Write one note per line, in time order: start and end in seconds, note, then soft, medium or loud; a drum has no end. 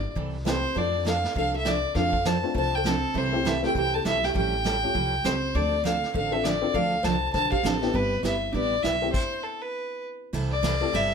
0.00 0.14 F4 medium
0.00 0.14 D5 medium
0.15 0.64 C2 medium
0.15 0.35 C3 medium
0.15 0.36 E3 medium
0.15 0.36 G3 medium
0.15 0.36 C4 medium
0.15 0.36 E4 medium
0.15 0.36 A4 soft
0.15 brush sweep medium
0.15 kick soft
0.45 0.56 C3 medium
0.45 0.56 E3 medium
0.45 0.56 G3 medium
0.45 0.61 A3 medium
0.45 0.62 C4 medium
0.45 0.57 C4 medium
0.45 0.75 C4 medium
0.45 0.62 E4 medium
0.45 0.57 E4 medium
0.45 0.62 G4 medium
0.45 0.57 A4 medium
0.45 0.79 C5 medium
0.45 snare medium
0.45 hi-hat pedal medium
0.75 1.24 F2 medium
0.75 0.95 F3 medium
0.75 1.20 A3 medium
0.75 0.95 C4 medium
0.75 1.20 C4 medium
0.75 0.95 D4 medium
0.75 1.20 D4 medium
0.75 1.20 F4 medium
0.75 1.06 F4 medium
0.75 0.96 A4 medium
0.75 1.07 D5 medium
0.75 brush sweep soft
0.75 kick soft
1.05 1.16 F3 medium
1.05 1.16 C4 medium
1.05 1.17 D4 medium
1.05 1.17 A4 medium
1.05 1.34 A4 medium
1.05 1.35 F5 medium
1.05 snare medium
1.05 hi-hat pedal medium
1.24 snare soft
1.34 1.84 C2 medium
1.34 1.55 F3 medium
1.34 1.55 C4 medium
1.34 1.55 D4 medium
1.34 1.55 A4 medium
1.34 1.53 F5 medium
1.34 brush sweep medium
1.34 kick soft
1.39 1.54 A4 medium
1.55 1.65 F4 medium
1.55 1.69 E5 medium
1.65 1.76 F3 medium
1.65 1.76 C4 medium
1.65 1.76 D4 medium
1.65 1.77 A4 medium
1.65 1.96 D5 loud
1.65 snare medium
1.65 hi-hat pedal medium
1.70 1.97 F4 medium
1.95 2.43 F2 medium
1.95 2.15 F3 medium
1.95 2.11 A3 medium
1.95 2.12 C4 soft
1.95 2.15 C4 medium
1.95 2.12 D4 medium
1.95 2.15 D4 medium
1.95 2.12 F4 medium
1.95 2.16 A4 medium
1.95 2.28 F5 loud
1.95 brush sweep soft
1.95 kick soft
1.95 snare soft
1.99 2.25 A4 medium
2.13 kick medium
2.25 2.36 F3 medium
2.25 2.36 C4 medium
2.25 2.36 D4 medium
2.25 2.37 A4 medium
2.25 2.56 C5 medium
2.25 2.56 A5 medium
2.25 snare medium
2.25 hi-hat pedal medium
2.43 2.83 A3 medium
2.43 2.83 C4 medium
2.43 2.83 D4 medium
2.43 2.83 F4 medium
2.54 3.03 C2 medium
2.54 2.74 F3 soft
2.54 2.74 C4 soft
2.54 2.75 D4 medium
2.54 2.75 A4 medium
2.54 2.74 C5 medium
2.54 2.76 A5 loud
2.54 brush sweep soft
2.54 kick soft
2.75 2.87 A4 medium
2.75 2.89 G5 medium
2.84 2.95 F3 medium
2.84 2.96 C4 medium
2.84 2.96 D4 medium
2.84 2.96 A4 medium
2.84 3.19 A4 loud
2.84 snare medium
2.84 hi-hat pedal medium
2.89 3.16 C4 medium
3.14 3.63 C2 medium
3.14 3.34 C3 medium
3.14 3.34 E3 medium
3.14 3.34 G3 medium
3.14 3.35 C4 medium
3.14 3.46 C4 medium
3.14 3.35 E4 medium
3.14 3.35 A4 medium
3.14 3.48 C5 medium
3.14 brush sweep medium
3.14 kick soft
3.32 3.61 A3 medium
3.32 3.61 C4 medium
3.32 3.61 E4 medium
3.32 3.61 G4 medium
3.45 3.56 C3 medium
3.45 3.56 E3 medium
3.45 3.56 G3 medium
3.45 3.56 C4 medium
3.45 3.56 E4 medium
3.45 3.64 E4 medium
3.45 3.56 A4 medium
3.45 3.64 E5 medium
3.45 snare medium
3.45 hi-hat pedal medium
3.63 3.74 A3 medium
3.63 3.74 C4 medium
3.63 3.74 E4 medium
3.63 3.76 G4 medium
3.63 3.74 A4 medium
3.63 3.75 G5 medium
3.63 snare soft
3.75 4.00 C2 medium
3.75 3.95 C3 medium
3.75 3.95 E3 medium
3.75 3.95 G3 medium
3.75 3.95 C4 medium
3.75 3.95 E4 medium
3.75 3.93 G4 medium
3.75 3.95 A4 medium
3.75 3.96 G5 medium
3.75 brush sweep medium
3.75 kick soft
3.94 4.06 A4 medium
3.94 4.05 A5 medium
4.05 4.30 B1 medium
4.05 4.16 C3 medium
4.05 4.16 E3 medium
4.05 4.16 G3 medium
4.05 4.16 C4 medium
4.05 4.16 E4 medium
4.05 4.23 E4 medium
4.05 4.16 A4 medium
4.05 4.26 E5 loud
4.05 snare medium
4.05 hi-hat pedal medium
4.23 4.35 G4 medium
4.23 4.36 G5 medium
4.23 snare soft
4.34 4.83 A1 medium
4.34 4.54 F3 medium
4.34 4.55 G3 medium
4.34 4.55 C#4 medium
4.34 4.55 G4 medium
4.34 5.21 G4 medium
4.34 4.55 A4 medium
4.34 5.27 G5 loud
4.34 brush sweep soft
4.34 kick soft
4.64 4.75 F3 medium
4.64 4.76 G3 medium
4.64 4.76 C#4 medium
4.64 4.76 G4 medium
4.64 4.76 A4 medium
4.64 snare medium
4.64 hi-hat pedal medium
4.83 4.94 A3 medium
4.83 4.94 C#4 medium
4.83 4.94 F4 medium
4.83 4.94 G4 medium
4.94 5.20 C2 medium
4.94 5.14 F3 soft
4.94 5.14 G3 medium
4.94 5.14 C#4 soft
4.94 5.15 G4 medium
4.94 5.15 A4 medium
4.94 brush sweep soft
4.94 kick soft
5.24 5.50 C#2 medium
5.24 5.35 F3 medium
5.24 5.35 G3 medium
5.24 5.55 C4 medium
5.24 5.36 C#4 medium
5.24 5.36 G4 medium
5.24 5.36 A4 medium
5.24 5.57 C5 medium
5.24 snare medium
5.24 hi-hat pedal medium
5.54 6.03 D2 medium
5.54 5.74 D3 medium
5.54 5.74 F3 medium
5.54 5.75 C4 medium
5.54 5.75 D4 medium
5.54 5.85 F4 medium
5.54 5.75 A4 medium
5.54 5.85 D5 medium
5.54 brush sweep soft
5.54 kick soft
5.84 5.95 D3 medium
5.84 5.95 F3 medium
5.84 5.96 C4 medium
5.84 5.96 D4 medium
5.84 5.96 A4 medium
5.84 6.13 A4 medium
5.84 6.13 F5 medium
5.84 snare medium
5.84 hi-hat pedal medium
6.04 snare soft
6.14 6.63 A1 medium
6.14 6.34 D3 medium
6.14 6.34 F3 soft
6.14 6.34 C4 medium
6.14 6.34 D4 medium
6.14 6.34 A4 medium
6.14 6.32 A4 medium
6.14 6.34 F5 medium
6.14 brush sweep soft
6.14 kick soft
6.32 6.43 C4 medium
6.32 6.43 D4 medium
6.32 6.43 F4 medium
6.32 6.43 A4 medium
6.32 6.45 E5 medium
6.44 6.55 D3 medium
6.44 6.56 F3 medium
6.44 6.56 C4 medium
6.44 6.56 D4 medium
6.44 6.74 F4 medium
6.44 6.56 A4 medium
6.44 6.76 D5 medium
6.44 snare medium
6.44 hi-hat pedal medium
6.62 6.73 C4 medium
6.62 6.73 D4 medium
6.62 6.73 F4 medium
6.62 6.73 A4 medium
6.74 6.98 D2 medium
6.74 6.94 D3 medium
6.74 6.94 F3 medium
6.74 6.94 C4 medium
6.74 6.94 D4 medium
6.74 7.05 A4 medium
6.74 6.95 A4 medium
6.74 7.06 F5 loud
6.74 brush sweep soft
6.74 kick soft
7.03 7.29 C2 medium
7.03 7.15 D3 medium
7.03 7.16 F3 medium
7.03 7.16 C4 medium
7.03 7.16 D4 medium
7.03 7.16 A4 medium
7.03 7.33 C5 medium
7.03 7.33 A5 medium
7.03 snare medium
7.03 hi-hat pedal soft
7.33 7.60 B1 medium
7.33 7.54 D3 medium
7.33 7.54 F3 medium
7.33 7.54 C4 medium
7.33 7.54 D4 medium
7.33 7.54 A4 medium
7.33 7.51 C5 medium
7.33 7.50 A5 loud
7.33 brush sweep soft
7.33 kick soft
7.33 snare soft
7.52 7.63 G4 medium
7.52 7.67 F5 medium
7.52 kick medium
7.63 7.89 A1 medium
7.63 7.75 D3 medium
7.63 7.75 F3 medium
7.63 7.75 C4 medium
7.63 7.94 C4 medium
7.63 7.75 D4 medium
7.63 7.75 A4 medium
7.63 7.96 A4 medium
7.63 snare medium
7.63 hi-hat pedal medium
7.82 7.93 B3 medium
7.82 7.93 D4 medium
7.82 7.93 E4 medium
7.82 7.93 G4 medium
7.82 snare soft
7.93 8.18 G1 medium
7.93 8.14 G3 medium
7.93 8.23 B3 medium
7.93 8.14 B3 medium
7.93 8.14 E4 medium
7.93 8.14 G4 medium
7.93 8.24 B4 medium
7.93 brush sweep soft
7.93 kick soft
8.23 8.49 G1 medium
8.23 8.34 G3 medium
8.23 8.35 B3 medium
8.23 8.51 E4 medium
8.23 8.35 E4 medium
8.23 8.35 G4 medium
8.23 8.52 E5 medium
8.23 snare medium
8.23 hi-hat pedal medium
8.53 8.80 A1 medium
8.53 8.74 G3 soft
8.53 8.74 B3 medium
8.53 8.81 D4 medium
8.53 8.74 E4 medium
8.53 8.74 G4 medium
8.53 8.85 D5 medium
8.53 brush sweep soft
8.53 kick soft
8.83 9.10 B1 medium
8.83 8.95 G3 medium
8.83 8.95 B3 medium
8.83 9.14 E4 medium
8.83 8.95 E4 medium
8.83 8.95 G4 medium
8.83 9.12 E5 loud
8.83 snare medium
8.83 hi-hat pedal medium
9.02 9.13 A3 medium
9.02 9.13 C4 medium
9.02 9.13 E4 medium
9.02 9.13 G4 medium
9.13 9.45 C5 medium
9.13 kick medium
9.13 crash medium
9.44 9.63 A4 medium
9.62 10.04 B4 medium
10.33 10.81 C2 medium
10.33 10.53 C3 medium
10.33 10.53 E3 medium
10.33 10.53 G3 medium
10.33 10.53 C4 medium
10.33 10.54 E4 medium
10.33 10.54 A4 medium
10.33 kick soft
10.33 ride medium
10.51 10.97 D5 medium
10.62 10.74 C3 medium
10.62 10.74 E3 medium
10.62 10.74 G3 medium
10.62 10.74 C4 medium
10.62 10.74 E4 medium
10.62 10.74 A4 medium
10.62 kick soft
10.62 snare medium
10.62 hi-hat pedal soft
10.62 ride medium
10.81 10.92 A3 medium
10.81 10.92 C4 medium
10.81 10.92 E4 medium
10.81 10.92 G4 medium
10.81 10.93 A4 medium
10.93 11.14 G1 medium
10.93 11.13 C3 medium
10.93 11.13 E3 medium
10.93 11.13 G3 medium
10.93 11.13 C4 medium
10.93 11.13 E4 medium
10.93 11.14 A4 medium
10.93 11.14 E5 loud
10.93 kick soft
10.93 ride medium